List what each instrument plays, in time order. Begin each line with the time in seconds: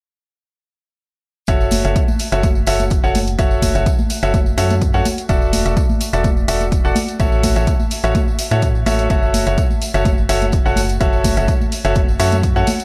1.47 fm bass F#1, grand piano F#4 A4 C#5 E5, kick, closed hi-hat, tambourine
1.61 tambourine
1.71 open hi-hat, tambourine, high conga
1.85 fm bass F#1, grand piano F#4 A4 C#5 E5, closed hi-hat, tambourine
1.96 kick, closed hi-hat, tambourine
2.08 tambourine, high conga
2.19 open hi-hat, tambourine
2.32 fm bass F#1, grand piano F#4 A4 C#5 E5, closed hi-hat, tambourine
2.43 kick, closed hi-hat, tambourine, high conga
2.55 tambourine
2.67 fm bass F#1, grand piano F#4 A4 C#5 E5, open hi-hat, tambourine
2.79 closed hi-hat, tambourine, high conga
2.90 kick, closed hi-hat, tambourine
3.04 fm bass F#1, grand piano F#4 A4 C#5 F#5, tambourine
3.15 open hi-hat, tambourine, high conga
3.27 closed hi-hat, tambourine
3.39 fm bass F#1, grand piano F#4 A4 C#5 E5, kick, closed hi-hat, tambourine
3.51 tambourine
3.62 kick, open hi-hat, tambourine, high conga
3.75 fm bass F#1, grand piano F#4 A4 C#5 E5, closed hi-hat, tambourine
3.86 kick, closed hi-hat, tambourine
3.99 tambourine, high conga
4.10 open hi-hat, tambourine
4.23 fm bass F#1, grand piano F#4 A4 C#5 E5, closed hi-hat, tambourine
4.34 kick, closed hi-hat, tambourine, high conga
4.46 tambourine
4.58 fm bass F#2, grand piano F#4 A4 C#5 E5, open hi-hat, tambourine
4.71 closed hi-hat, tambourine, high conga
4.82 kick, closed hi-hat, tambourine
4.94 fm bass F#2, grand piano F#4 A4 C#5 F#5, tambourine
5.05 open hi-hat, tambourine, high conga
5.18 closed hi-hat, tambourine
5.29 fm bass E1, grand piano F#4 A4 D5 E5, kick, closed hi-hat, tambourine
5.42 tambourine
5.53 open hi-hat, tambourine, high conga
5.66 fm bass E1, grand piano F#4 A4 D5 E5, closed hi-hat, tambourine
5.77 kick, closed hi-hat, tambourine
5.89 tambourine, high conga
6.01 open hi-hat, tambourine
6.13 fm bass E1, grand piano F#4 A4 D5 E5, closed hi-hat, tambourine
6.24 kick, closed hi-hat, tambourine, high conga
6.37 tambourine
6.48 fm bass E1, grand piano F#4 A4 D5 E5, open hi-hat, tambourine
6.61 closed hi-hat, tambourine, high conga
6.72 kick, closed hi-hat, tambourine
6.85 fm bass E1, grand piano F#4 A4 D5 F#5, tambourine
6.95 open hi-hat, tambourine, high conga
7.08 closed hi-hat, tambourine
7.20 fm bass A1, grand piano F#4 A4 C#5 E5, kick, closed hi-hat, tambourine
7.32 tambourine
7.43 kick, open hi-hat, tambourine, high conga
7.56 fm bass A1, grand piano F#4 A4 C#5 E5, closed hi-hat, tambourine
7.67 kick, closed hi-hat, tambourine
7.80 tambourine, high conga
7.91 open hi-hat, tambourine
8.03 fm bass A1, grand piano F#4 A4 C#5 E5, closed hi-hat, tambourine
8.15 kick, closed hi-hat, tambourine, high conga
8.28 tambourine
8.39 open hi-hat, tambourine
8.51 fm bass A2, grand piano F#4 A4 C#5 E5, closed hi-hat, tambourine, high conga
8.62 kick, closed hi-hat, tambourine
8.75 tambourine
8.86 fm bass A1, grand piano F#4 A4 C#5 E5, open hi-hat, tambourine, high conga
8.99 closed hi-hat, tambourine
9.10 fm bass F#1, grand piano F#4 A4 C#5 E5, kick, closed hi-hat, tambourine
9.23 tambourine
9.34 open hi-hat, tambourine, high conga
9.46 fm bass F#1, grand piano F#4 A4 C#5 E5, closed hi-hat, tambourine
9.58 kick, closed hi-hat, tambourine
9.70 tambourine, high conga
9.82 open hi-hat, tambourine
9.94 fm bass F#1, grand piano F#4 A4 C#5 E5, closed hi-hat, tambourine
10.05 kick, closed hi-hat, tambourine, high conga
10.18 tambourine
10.29 fm bass F#1, grand piano F#4 A4 C#5 E5, open hi-hat, tambourine
10.42 closed hi-hat, tambourine, high conga
10.52 kick, closed hi-hat, tambourine
10.66 fm bass F#1, grand piano F#4 A4 C#5 F#5, tambourine
10.76 open hi-hat, tambourine, high conga
10.89 closed hi-hat, tambourine
11.00 fm bass F#1, grand piano F#4 A4 C#5 E5, kick, closed hi-hat, tambourine
11.13 tambourine
11.24 kick, open hi-hat, tambourine, high conga
11.37 fm bass F#1, grand piano F#4 A4 C#5 E5, closed hi-hat, tambourine
11.48 kick, closed hi-hat, tambourine
11.61 tambourine, high conga
11.72 open hi-hat, tambourine
11.85 fm bass F#1, grand piano F#4 A4 C#5 E5, closed hi-hat, tambourine
11.95 kick, closed hi-hat, tambourine, high conga
12.08 tambourine
12.20 fm bass F#2, grand piano F#4 A4 C#5 E5, open hi-hat, tambourine
12.32 closed hi-hat, tambourine, high conga
12.43 kick, closed hi-hat, tambourine
12.56 fm bass F#2, grand piano F#4 A4 C#5 F#5, tambourine
12.67 open hi-hat, tambourine, high conga
12.80 closed hi-hat, tambourine